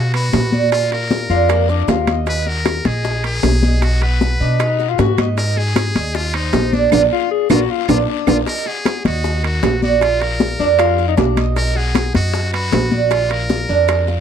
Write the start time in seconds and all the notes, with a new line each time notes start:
Already playing: B2 F#4 F5
0.14 F#4 B4, high conga, high timbale, claves, maracas
0.33 A#2, high bongo, low bongo, high conga, high timbale, low timbale, short guiro, maracas
0.52 D5, high bongo, high conga, short guiro, maracas
0.72 F4, high bongo, high conga, high timbale, long guiro, claves, maracas
0.91 F4 A#4, high bongo, high conga, high timbale, maracas
1.10 high bongo, high conga, low timbale, short guiro, maracas
1.30 F2 D4 F4, high conga, short guiro, maracas
1.49 A#3, high bongo, high conga, high timbale, long guiro, claves, maracas
1.69 D4 F4, high bongo, high conga, maracas
1.88 D#2 F4, high bongo, low bongo, high conga, high timbale, low timbale, short guiro, maracas
2.07 D#5, high bongo, high conga, high timbale, short guiro, claves, maracas
2.27 D#4 B4, high bongo, high conga, high timbale, long guiro, maracas
2.46 F#4 A#4, high bongo, high conga, maracas
2.65 high bongo, high conga, high timbale, low timbale, short guiro, claves, maracas
2.85 A#1 G#4 D#5, high bongo, high conga, high timbale, short guiro, maracas
3.04 high bongo, high conga, long guiro, maracas
3.24 G#4 A#4, high conga, high timbale, claves, maracas
3.43 B1, high bongo, low bongo, high conga, high timbale, low timbale, short guiro, maracas
3.63 D#5, high bongo, high conga, short guiro, maracas
3.82 F#4, high bongo, high conga, high timbale, long guiro, claves, maracas
4.02 F#4 B4, high bongo, high conga, high timbale, maracas
4.21 high bongo, high conga, low timbale, short guiro, maracas
4.40 B2 D4 D#4, high conga, short guiro, maracas
4.60 D#4, high bongo, high conga, high timbale, long guiro, claves, maracas
4.79 F#4, high bongo, high conga, maracas
4.89 F4
4.98 G#2 F#4, high bongo, low bongo, high conga, high timbale, low timbale, short guiro, maracas
5.18 D#5, high bongo, high conga, high timbale, short guiro, claves, maracas
5.37 D#4 A#4, high bongo, high conga, high timbale, long guiro, maracas
5.57 G#4, high bongo, high conga, maracas
5.76 high bongo, high conga, high timbale, low timbale, short guiro, claves, maracas
5.95 D#2 D#5, high bongo, high conga, high timbale, short guiro, maracas
6.14 F4, high bongo, high conga, long guiro, maracas
6.34 D#4 C5, high conga, high timbale, claves, maracas
6.53 A#1, high bongo, low bongo, high conga, high timbale, low timbale, short guiro, maracas
6.73 D4 D5, high bongo, high conga, short guiro, maracas
6.91 A#1 D4 F4 A#4, low bongo, high conga, high timbale, long guiro, claves, maracas
7.12 F4
7.31 G#4
7.50 A#1 D4 F4 F#4 A#4, low bongo, high conga, high timbale, long guiro, claves, maracas
7.70 F4
7.88 A#1 D4 F4 A#4, low bongo, high conga, high timbale, long guiro, claves, maracas
8.09 D4
8.27 A#1 D4 F4 A#4, low bongo, high conga, high timbale, long guiro, claves, maracas
8.46 D#4 A#4, high bongo, high conga, high timbale, long guiro, maracas
8.66 F#4 G#4, high bongo, high conga, maracas
8.85 high bongo, high conga, high timbale, low timbale, short guiro, claves, maracas
9.04 D#2 F#4 D#5, high bongo, high conga, high timbale, short guiro, maracas
9.24 high bongo, high conga, long guiro, maracas
9.43 F#4 A#4, high conga, high timbale, claves, maracas
9.63 A#1, high bongo, low bongo, high conga, high timbale, low timbale, short guiro, maracas
9.82 F#4 D5, high bongo, high conga, short guiro, maracas
10.01 F4, high bongo, high conga, high timbale, long guiro, claves, maracas
10.21 F4 A#4, high bongo, high conga, high timbale, maracas
10.40 high bongo, high conga, low timbale, short guiro, maracas
10.59 F2 D4, high conga, short guiro, maracas
10.79 F4, high bongo, high conga, high timbale, long guiro, claves, maracas
10.98 F4, high bongo, high conga, maracas
11.08 D#4
11.17 B1 D4, high bongo, low bongo, high conga, high timbale, low timbale, short guiro, maracas
11.37 D#5, high bongo, high conga, high timbale, short guiro, claves, maracas
11.56 D#4 A#4, high bongo, high conga, high timbale, long guiro, maracas
11.75 F#4 G#4, high bongo, high conga, maracas
11.95 high bongo, high conga, high timbale, low timbale, short guiro, claves, maracas
12.14 F#2 F#4 D#5, high bongo, high conga, high timbale, short guiro, maracas
12.34 high bongo, high conga, long guiro, maracas
12.53 F#4 B4, high conga, high timbale, claves, maracas
12.72 A#1, high bongo, low bongo, high conga, high timbale, low timbale, short guiro, maracas
12.91 D5, high bongo, high conga, short guiro, maracas
13.11 F4, high bongo, high conga, high timbale, long guiro, claves, maracas
13.30 F4 A#4, high bongo, high conga, high timbale, maracas
13.49 high bongo, high conga, low timbale, short guiro, maracas
13.68 F2 D4, high conga, short guiro, maracas
13.88 high bongo, high conga, high timbale, long guiro, claves, maracas
14.07 F4, high bongo, high conga, maracas